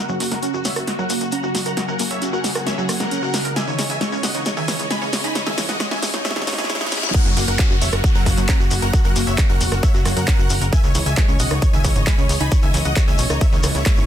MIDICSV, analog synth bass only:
0, 0, Header, 1, 2, 480
1, 0, Start_track
1, 0, Tempo, 447761
1, 1899, Time_signature, 4, 2, 24, 8
1, 15073, End_track
2, 0, Start_track
2, 0, Title_t, "Analog synth bass"
2, 0, Program_c, 0, 38
2, 98, Note_on_c, 0, 30, 89
2, 197, Note_off_c, 0, 30, 0
2, 217, Note_on_c, 0, 30, 96
2, 317, Note_off_c, 0, 30, 0
2, 337, Note_on_c, 0, 30, 89
2, 437, Note_off_c, 0, 30, 0
2, 578, Note_on_c, 0, 30, 88
2, 677, Note_off_c, 0, 30, 0
2, 698, Note_on_c, 0, 28, 92
2, 797, Note_off_c, 0, 28, 0
2, 817, Note_on_c, 0, 30, 91
2, 916, Note_off_c, 0, 30, 0
2, 1057, Note_on_c, 0, 30, 90
2, 1157, Note_off_c, 0, 30, 0
2, 1177, Note_on_c, 0, 30, 102
2, 1276, Note_off_c, 0, 30, 0
2, 1297, Note_on_c, 0, 30, 92
2, 1397, Note_off_c, 0, 30, 0
2, 1537, Note_on_c, 0, 30, 85
2, 1637, Note_off_c, 0, 30, 0
2, 1657, Note_on_c, 0, 30, 95
2, 1757, Note_off_c, 0, 30, 0
2, 1778, Note_on_c, 0, 30, 90
2, 1877, Note_off_c, 0, 30, 0
2, 2018, Note_on_c, 0, 30, 90
2, 2117, Note_off_c, 0, 30, 0
2, 2137, Note_on_c, 0, 30, 100
2, 2237, Note_off_c, 0, 30, 0
2, 2258, Note_on_c, 0, 30, 92
2, 2357, Note_off_c, 0, 30, 0
2, 2498, Note_on_c, 0, 30, 85
2, 2597, Note_off_c, 0, 30, 0
2, 2618, Note_on_c, 0, 28, 89
2, 2717, Note_off_c, 0, 28, 0
2, 2738, Note_on_c, 0, 30, 91
2, 2837, Note_off_c, 0, 30, 0
2, 2978, Note_on_c, 0, 30, 87
2, 3077, Note_off_c, 0, 30, 0
2, 3098, Note_on_c, 0, 30, 103
2, 3197, Note_off_c, 0, 30, 0
2, 3218, Note_on_c, 0, 30, 88
2, 3317, Note_off_c, 0, 30, 0
2, 3458, Note_on_c, 0, 30, 84
2, 3557, Note_off_c, 0, 30, 0
2, 3579, Note_on_c, 0, 30, 101
2, 3677, Note_off_c, 0, 30, 0
2, 3698, Note_on_c, 0, 30, 93
2, 3797, Note_off_c, 0, 30, 0
2, 3939, Note_on_c, 0, 37, 86
2, 4037, Note_off_c, 0, 37, 0
2, 4058, Note_on_c, 0, 37, 95
2, 4157, Note_off_c, 0, 37, 0
2, 4178, Note_on_c, 0, 37, 94
2, 4277, Note_off_c, 0, 37, 0
2, 4418, Note_on_c, 0, 37, 88
2, 4517, Note_off_c, 0, 37, 0
2, 4538, Note_on_c, 0, 35, 97
2, 4637, Note_off_c, 0, 35, 0
2, 4658, Note_on_c, 0, 37, 94
2, 4757, Note_off_c, 0, 37, 0
2, 4898, Note_on_c, 0, 37, 92
2, 4997, Note_off_c, 0, 37, 0
2, 5019, Note_on_c, 0, 37, 102
2, 5117, Note_off_c, 0, 37, 0
2, 5138, Note_on_c, 0, 37, 89
2, 5237, Note_off_c, 0, 37, 0
2, 5378, Note_on_c, 0, 37, 85
2, 5477, Note_off_c, 0, 37, 0
2, 5498, Note_on_c, 0, 37, 99
2, 5597, Note_off_c, 0, 37, 0
2, 5619, Note_on_c, 0, 37, 91
2, 5717, Note_off_c, 0, 37, 0
2, 5858, Note_on_c, 0, 37, 86
2, 5957, Note_off_c, 0, 37, 0
2, 5978, Note_on_c, 0, 37, 103
2, 6077, Note_off_c, 0, 37, 0
2, 6097, Note_on_c, 0, 37, 97
2, 6197, Note_off_c, 0, 37, 0
2, 6338, Note_on_c, 0, 37, 89
2, 6437, Note_off_c, 0, 37, 0
2, 6459, Note_on_c, 0, 35, 94
2, 6557, Note_off_c, 0, 35, 0
2, 6578, Note_on_c, 0, 37, 95
2, 6677, Note_off_c, 0, 37, 0
2, 6818, Note_on_c, 0, 37, 85
2, 6917, Note_off_c, 0, 37, 0
2, 6938, Note_on_c, 0, 37, 102
2, 7037, Note_off_c, 0, 37, 0
2, 7058, Note_on_c, 0, 32, 91
2, 7157, Note_off_c, 0, 32, 0
2, 7298, Note_on_c, 0, 37, 86
2, 7397, Note_off_c, 0, 37, 0
2, 7418, Note_on_c, 0, 37, 105
2, 7517, Note_off_c, 0, 37, 0
2, 7538, Note_on_c, 0, 37, 91
2, 7637, Note_off_c, 0, 37, 0
2, 7778, Note_on_c, 0, 30, 89
2, 7877, Note_off_c, 0, 30, 0
2, 7898, Note_on_c, 0, 30, 96
2, 7997, Note_off_c, 0, 30, 0
2, 8018, Note_on_c, 0, 30, 94
2, 8117, Note_off_c, 0, 30, 0
2, 8258, Note_on_c, 0, 30, 90
2, 8357, Note_off_c, 0, 30, 0
2, 8378, Note_on_c, 0, 28, 99
2, 8477, Note_off_c, 0, 28, 0
2, 8498, Note_on_c, 0, 30, 94
2, 8597, Note_off_c, 0, 30, 0
2, 8738, Note_on_c, 0, 30, 88
2, 8837, Note_off_c, 0, 30, 0
2, 8858, Note_on_c, 0, 30, 105
2, 8957, Note_off_c, 0, 30, 0
2, 8978, Note_on_c, 0, 42, 94
2, 9077, Note_off_c, 0, 42, 0
2, 9218, Note_on_c, 0, 30, 85
2, 9317, Note_off_c, 0, 30, 0
2, 9338, Note_on_c, 0, 30, 99
2, 9437, Note_off_c, 0, 30, 0
2, 9458, Note_on_c, 0, 30, 88
2, 9557, Note_off_c, 0, 30, 0
2, 9698, Note_on_c, 0, 30, 89
2, 9797, Note_off_c, 0, 30, 0
2, 9818, Note_on_c, 0, 30, 100
2, 9917, Note_off_c, 0, 30, 0
2, 9938, Note_on_c, 0, 30, 95
2, 10037, Note_off_c, 0, 30, 0
2, 10178, Note_on_c, 0, 30, 92
2, 10277, Note_off_c, 0, 30, 0
2, 10298, Note_on_c, 0, 28, 97
2, 10397, Note_off_c, 0, 28, 0
2, 10418, Note_on_c, 0, 30, 94
2, 10517, Note_off_c, 0, 30, 0
2, 10658, Note_on_c, 0, 30, 84
2, 10757, Note_off_c, 0, 30, 0
2, 10777, Note_on_c, 0, 30, 101
2, 10877, Note_off_c, 0, 30, 0
2, 10897, Note_on_c, 0, 42, 94
2, 10997, Note_off_c, 0, 42, 0
2, 11137, Note_on_c, 0, 30, 82
2, 11237, Note_off_c, 0, 30, 0
2, 11257, Note_on_c, 0, 30, 101
2, 11356, Note_off_c, 0, 30, 0
2, 11377, Note_on_c, 0, 30, 90
2, 11477, Note_off_c, 0, 30, 0
2, 11617, Note_on_c, 0, 37, 89
2, 11717, Note_off_c, 0, 37, 0
2, 11737, Note_on_c, 0, 37, 104
2, 11837, Note_off_c, 0, 37, 0
2, 11857, Note_on_c, 0, 37, 94
2, 11957, Note_off_c, 0, 37, 0
2, 12097, Note_on_c, 0, 37, 90
2, 12196, Note_off_c, 0, 37, 0
2, 12217, Note_on_c, 0, 35, 96
2, 12317, Note_off_c, 0, 35, 0
2, 12337, Note_on_c, 0, 37, 94
2, 12436, Note_off_c, 0, 37, 0
2, 12577, Note_on_c, 0, 37, 92
2, 12677, Note_off_c, 0, 37, 0
2, 12698, Note_on_c, 0, 37, 97
2, 12797, Note_off_c, 0, 37, 0
2, 12817, Note_on_c, 0, 32, 92
2, 12917, Note_off_c, 0, 32, 0
2, 13057, Note_on_c, 0, 37, 89
2, 13157, Note_off_c, 0, 37, 0
2, 13177, Note_on_c, 0, 37, 106
2, 13277, Note_off_c, 0, 37, 0
2, 13298, Note_on_c, 0, 37, 88
2, 13397, Note_off_c, 0, 37, 0
2, 13538, Note_on_c, 0, 37, 88
2, 13637, Note_off_c, 0, 37, 0
2, 13657, Note_on_c, 0, 37, 99
2, 13757, Note_off_c, 0, 37, 0
2, 13777, Note_on_c, 0, 37, 94
2, 13877, Note_off_c, 0, 37, 0
2, 14018, Note_on_c, 0, 37, 89
2, 14117, Note_off_c, 0, 37, 0
2, 14137, Note_on_c, 0, 35, 95
2, 14237, Note_off_c, 0, 35, 0
2, 14257, Note_on_c, 0, 37, 94
2, 14357, Note_off_c, 0, 37, 0
2, 14497, Note_on_c, 0, 37, 85
2, 14597, Note_off_c, 0, 37, 0
2, 14617, Note_on_c, 0, 37, 100
2, 14716, Note_off_c, 0, 37, 0
2, 14737, Note_on_c, 0, 37, 89
2, 14837, Note_off_c, 0, 37, 0
2, 14977, Note_on_c, 0, 32, 86
2, 15073, Note_off_c, 0, 32, 0
2, 15073, End_track
0, 0, End_of_file